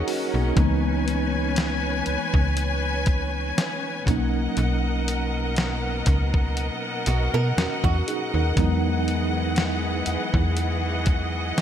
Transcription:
Already playing: tine electric piano F#3 D#4 G#4 A#4 C#5 D#5, string section C#4 A#4 D#5 F#5, nylon-string guitar F#4
0.07 tine electric piano C#4 F#4, open hi-hat
0.34 fm bass B1, tine electric piano A#3 D#4
0.56 fm bass C#2, tine electric piano E3 G#3 B3, string section B4 C#5 G#5, kick, closed hi-hat
0.60 tine electric piano D#4
1.08 closed hi-hat
1.56 snare, closed hi-hat
2.06 fm bass C#2, closed hi-hat
2.34 fm bass C#2, kick
2.57 closed hi-hat
3.06 kick, closed hi-hat
3.58 snare, closed hi-hat
4.06 fm bass B1, string section B2 A#4 D#5 F#5, tine electric piano F#3 A#3 C#4, kick, closed hi-hat
4.10 tine electric piano D#4
4.57 fm bass B1, closed hi-hat
5.08 closed hi-hat
5.56 snare, closed hi-hat
6.06 fm bass C#2, kick, closed hi-hat
6.34 kick
6.57 closed hi-hat
7.06 fm bass B1, nylon-string guitar F#4, closed hi-hat
7.34 fm bass B2, nylon-string guitar A#4
7.57 fm bass E2, tine electric piano C#4 F#4, snare, closed hi-hat
7.84 fm bass E2, nylon-string guitar F#4, kick
8.07 tine electric piano D#4 G#4, closed hi-hat
8.34 fm bass D#2, tine electric piano D#4 A#4
8.56 fm bass E2, string section E3 G#4, tine electric piano F#3 G#3 B3, kick, closed hi-hat
8.60 tine electric piano D#4
9.08 closed hi-hat
9.56 snare, closed hi-hat
10.06 fm bass E2, closed hi-hat
10.34 fm bass E2, kick
10.57 string section D#5, closed hi-hat
11.06 kick, closed hi-hat
11.58 snare, closed hi-hat

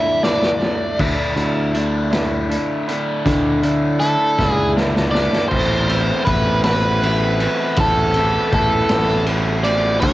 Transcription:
Already playing: clean electric guitar D3 D4 E4, overdriven electric guitar E3 A3 D4 E5, tonewheel organ A4 E5
0.23 overdriven electric guitar E3 A3 E4 D5, clean electric guitar D4, snare
0.42 snare
0.60 clean electric guitar A3, overdriven electric guitar D4 E4, snare
0.99 picked electric bass D2, clean electric guitar D3 A3 D4 E4, tonewheel organ E4 D5 A5, kick, crash
1.36 picked electric bass D2, clean electric guitar D3 A3 D4 E4, closed hi-hat
1.73 clean electric guitar D3 A3 D4 E4, closed hi-hat
1.78 overdriven electric guitar E4
2.10 clean electric guitar D3 A3 D4 E4, snare, closed hi-hat
2.15 overdriven electric guitar D3 D4
2.49 clean electric guitar D3 A3 D4 E4, closed hi-hat
2.88 clean electric guitar D3 A3 D4 E4, closed hi-hat
3.25 clean electric guitar D3 A3 D4 E4, picked electric bass D3, tonewheel organ E5, kick, closed hi-hat
3.62 clean electric guitar D3 A3 D4 E4, closed hi-hat
4.00 clean electric guitar D3 A3 D4 E4, overdriven electric guitar A4, closed hi-hat
4.38 picked electric bass C#2, clean electric guitar D3 A3 D4 E4, kick, snare
4.50 overdriven electric guitar G#4
4.75 clean electric guitar D3 A3 D4 E4, snare
4.96 snare
5.11 clean electric guitar D3 A3 D4 E4, overdriven electric guitar D5, snare
5.33 snare
5.49 picked electric bass A1, clean electric guitar A2 E3 C4, overdriven electric guitar A3 C5, kick, crash
5.53 clean electric guitar B3 E4, tonewheel organ A4 E5 B5
5.88 clean electric guitar A2 E3 B3 C4 E4, overdriven electric guitar A3, ride
6.25 picked electric bass A1, clean electric guitar A2 E3 B3 C4 E4, overdriven electric guitar A3 B4, kick, ride
6.64 clean electric guitar A2 E3 B3 C4 E4, overdriven electric guitar A3 B4, snare, ride
7.02 clean electric guitar A2 E3 B3 C4 E4, overdriven electric guitar A3, ride
7.40 clean electric guitar A2 E3 B3 C4 E4, overdriven electric guitar A3, ride
7.76 picked electric bass A1, clean electric guitar A2 E3 B3 C4 E4, overdriven electric guitar A3 A4, kick, ride
8.14 clean electric guitar A2 E3 B3 C4 E4, overdriven electric guitar A3, ride
8.51 picked electric bass A1, clean electric guitar A2 E3 B3 C4 E4, overdriven electric guitar A3 A4, kick, ride
8.89 picked electric bass A1, clean electric guitar A2 E3 B3 C4 E4, snare, ride
8.93 overdriven electric guitar A3
9.26 clean electric guitar A2 E3 B3 C4 E4, ride
9.31 overdriven electric guitar A3 C4
9.64 clean electric guitar A2 E3 B3 C4 E4, overdriven electric guitar A3 D5, ride
10.00 picked electric bass D2, clean electric guitar D3 F#3 A3 D4 E4, overdriven electric guitar C#5, tonewheel organ F#5 E6, kick, crash
10.04 tonewheel organ D4, overdriven electric guitar F#4

